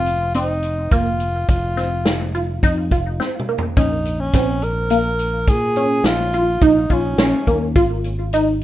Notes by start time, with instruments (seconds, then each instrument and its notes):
Already playing: fingered electric bass F1, synth pluck C4, tenor saxophone F4
0.06 closed hi-hat
0.34 synth pluck C4, tenor saxophone D#4, closed hi-hat
0.63 closed hi-hat
0.91 fingered electric bass F1, synth pluck A#3, tenor saxophone F4, kick, closed hi-hat
1.20 closed hi-hat
1.49 fingered electric bass F1, tenor saxophone F4, kick, closed hi-hat
1.77 synth pluck C4, snare, closed hi-hat
2.05 snare, closed hi-hat
2.35 synth pluck F4, closed hi-hat
2.63 fingered electric bass F2, synth pluck D#4, kick, closed hi-hat
2.91 fingered electric bass F1, synth pluck F4, kick, closed hi-hat
3.20 synth pluck C4, snare
3.39 mid tom
3.49 synth pluck A#3
3.58 floor tom
3.77 fingered electric bass A#1, synth pluck C#4, tenor saxophone D#4, kick, closed hi-hat
4.05 closed hi-hat
4.20 tenor saxophone C#4
4.34 fingered electric bass A#1, synth pluck C4, kick, snare, closed hi-hat
4.62 tenor saxophone A#4, closed hi-hat
4.90 synth pluck A#3, closed hi-hat
5.19 closed hi-hat
5.47 fingered electric bass A#2, tenor saxophone G#4, kick, closed hi-hat
5.76 synth pluck C#4, closed hi-hat
6.03 fingered electric bass A#1, tenor saxophone F4, snare, closed hi-hat
6.33 synth pluck F4, closed hi-hat
6.61 fingered electric bass A#1, synth pluck D#4, tenor saxophone D#4, kick, closed hi-hat
6.90 fingered electric bass A#1, tenor saxophone C#4, synth pluck F4, kick, closed hi-hat
7.18 fingered electric bass A#1, synth pluck C#4, snare, closed hi-hat
7.47 fingered electric bass D#2, synth pluck A#3, kick, closed hi-hat
7.75 fingered electric bass G#1, synth pluck F4, kick, closed hi-hat
8.04 closed hi-hat
8.33 synth pluck D#4, closed hi-hat